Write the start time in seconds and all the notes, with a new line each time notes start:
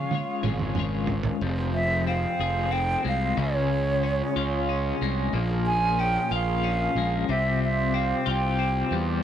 Already playing: C#3 F3 G#3 C#4 F4 G#4 C#5 F5
0.11 G#3 C#4 F4 C#5, high tom
0.43 G#1 F3 G#3 C#4 F4 C#5, mid tom
0.47 C#3
0.59 mid tom
0.75 G#3 C#4 F4, mid tom
0.80 C#5
1.07 floor tom
1.23 floor tom
1.41 F1 F2 C4 F4 G#4 C5
1.74 E5
2.07 C4 F5
2.39 F1 G#4
2.71 C4 G5
3.04 C2 G#3 F5
3.37 C#2 C#3 C#4 C#5
4.03 C#4
4.36 C#2 F4
4.69 C#4
5.01 C2 G#3
5.33 A#1 A#2 A#4
5.66 G#5
5.99 C#4 G5
6.31 A#1 F4 F5
6.64 C#4
6.95 A#1 G#3
7.29 C2 C3 C4 G4 C5 E5
7.64 E5
7.94 C4 F5
8.26 C2 F4 G5
8.59 C4
8.91 E2 G3